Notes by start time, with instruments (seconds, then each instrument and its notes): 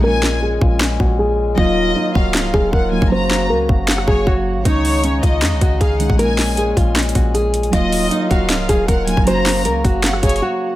Already playing: 808-style bass A#1
0.01 harmonium A#2 G#3 C#4, synth keys G#3 A#3 C#4 F4, nylon-string guitar A#4, violin section G#5
0.23 snare, clap
0.42 nylon-string guitar G#4
0.61 808-style bass A#1, nylon-string guitar F4, kick
0.81 snare, clap
1.00 808-style bass A#1, nylon-string guitar F#4, kick
1.19 nylon-string guitar G#4
1.56 808-style bass D#1, harmonium D#3 F#3 F4, synth keys F#3 A#3 D#4 F4, nylon-string guitar F4, violin section D#5, kick
1.96 nylon-string guitar D#4
2.15 808-style bass D#1, nylon-string guitar F#4, violin section F5, kick
2.34 808-style bass C#1, snare, clap
2.54 808-style bass D#1, nylon-string guitar G#4, kick
2.73 808-style bass D#1, nylon-string guitar A#4, violin section F#5, kick
2.91 synth keys F#3 A#3 D#4 F4, violin section G#5
3.02 808-style bass F#1, kick
3.10 harmonium C#3 A#3 F#4, synth keys F#3 A#3 C#4 F#4, nylon-string guitar C5, violin section A#5
3.31 snare, clap
3.50 808-style bass C#2, nylon-string guitar A#4
3.69 808-style bass F#1, nylon-string guitar F#4, kick
3.88 violin section F#5, snare, clap
3.98 cross-stick
4.07 808-style bass F#1, nylon-string guitar G#4, violin section C#5, kick
4.27 808-style bass F#1, nylon-string guitar F#4, kick
4.56 808-style bass G#1
4.64 808-style bass C#2, synth keys D#3 G#3 C#4 D#4, harmonium G#3 D#4, nylon-string guitar D#4, violin section C#5, kick, closed hi-hat
4.85 open hi-hat
5.04 nylon-string guitar C#4, closed hi-hat
5.23 808-style bass C#2, nylon-string guitar F4, violin section D#5, kick, closed hi-hat
5.42 808-style bass F2, snare, clap, closed hi-hat
5.52 808-style bass C#2
5.61 808-style bass C#2, nylon-string guitar F#4, kick, closed hi-hat
5.81 808-style bass C#2, nylon-string guitar G#4, violin section F5, kick, closed hi-hat
5.99 synth keys D#3 G#3 C#4 D#4, violin section F#5, closed hi-hat
6.10 808-style bass A#1, kick
6.17 harmonium A#2 C#4, synth keys G#3 A#3 C#4 F4, nylon-string guitar A#4, violin section G#5, closed hi-hat
6.38 snare, clap, open hi-hat
6.57 nylon-string guitar G#4, closed hi-hat
6.77 808-style bass A#1, nylon-string guitar F4, kick, closed hi-hat
6.96 snare, clap, closed hi-hat
7.02 closed hi-hat
7.09 closed hi-hat
7.15 808-style bass A#1, nylon-string guitar F#4, kick, closed hi-hat
7.34 nylon-string guitar G#4, closed hi-hat
7.54 closed hi-hat
7.63 closed hi-hat
7.71 808-style bass D#1, harmonium D#3 F#3 F4, synth keys F#3 A#3 D#4 F4, nylon-string guitar F4, violin section D#5, kick, closed hi-hat
7.92 open hi-hat
8.11 nylon-string guitar D#4, closed hi-hat
8.31 808-style bass D#1, nylon-string guitar F#4, violin section F5, kick, closed hi-hat
8.50 808-style bass C#1, snare, clap, closed hi-hat
8.69 808-style bass D#1, nylon-string guitar G#4, kick, closed hi-hat
8.88 808-style bass D#1, nylon-string guitar A#4, violin section F#5, kick, closed hi-hat
9.07 synth keys F#3 A#3 D#4 F4, violin section G#5, closed hi-hat
9.17 808-style bass F#1, kick
9.25 harmonium C#3 A#3 F#4, synth keys F#3 A#3 C#4 F#4, nylon-string guitar C5, violin section A#5, closed hi-hat
9.46 snare, clap, open hi-hat
9.65 808-style bass C#2, nylon-string guitar A#4, closed hi-hat
9.85 808-style bass F#1, nylon-string guitar F#4, kick, closed hi-hat
10.04 violin section F#5, snare, clap, closed hi-hat
10.13 cross-stick
10.23 808-style bass F#1, nylon-string guitar G#4, violin section C#5, kick, closed hi-hat
10.29 closed hi-hat
10.36 closed hi-hat
10.42 nylon-string guitar F#4